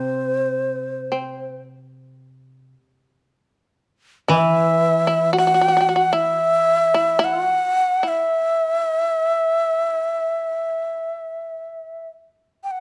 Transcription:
Already playing: koto C3, shamisen C4, shakuhachi C5
1.12 shamisen C4
4.28 koto E3, shamisen E4, shakuhachi E5
5.07 shamisen E4
5.33 shamisen F#4
5.38 shamisen F#4, shakuhachi F#5
5.47 shamisen F#4
5.54 shamisen F#4
5.61 shamisen F#4
5.68 shamisen F#4
5.77 shamisen F#4
5.89 shamisen F#4
5.96 shamisen F#4
6.13 shamisen E4, shakuhachi E5
6.94 shamisen E4
7.19 shamisen E4
7.24 shakuhachi F#5
7.43 shamisen F#4
8.03 shamisen E4
8.08 shakuhachi E5
12.64 shakuhachi G5
12.71 shakuhachi F#5

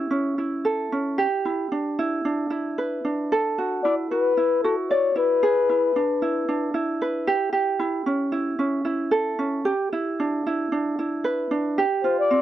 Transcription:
Already playing: ukulele E4 G4
0.11 ukulele C#4
0.38 ukulele E4
0.65 ukulele A4
0.92 ukulele C#4
1.18 ukulele G4
1.45 ukulele E4
1.72 ukulele D4
1.99 ukulele E4
2.25 ukulele D4
2.50 ukulele E4
2.78 ukulele B4
3.05 ukulele D4
3.32 ukulele A4
3.58 ukulele F#4
3.84 ukulele E4, flugelhorn D5
4.11 ukulele F#4, flugelhorn B4
4.37 ukulele E4
4.64 ukulele F#4, flugelhorn A4
4.91 flugelhorn C#5, ukulele D5
5.16 ukulele E4, flugelhorn B4
5.43 ukulele G#4
5.69 ukulele E4
5.96 ukulele D4
6.22 ukulele E4
6.49 ukulele D4
6.74 ukulele E4
7.02 ukulele B4
7.27 ukulele G4
7.53 ukulele G4
7.79 ukulele E4
8.06 ukulele C#4
8.32 ukulele E4
8.59 ukulele C#4
8.85 ukulele E4
9.11 ukulele A4
9.39 ukulele C#4
9.65 ukulele G4
9.93 ukulele E4
10.20 ukulele D4
10.47 ukulele E4
10.72 ukulele D4
10.99 ukulele E4
11.24 ukulele B4
11.51 ukulele D4
11.78 ukulele G4
12.04 ukulele F4, flugelhorn C5
12.19 flugelhorn D5
12.31 ukulele C4

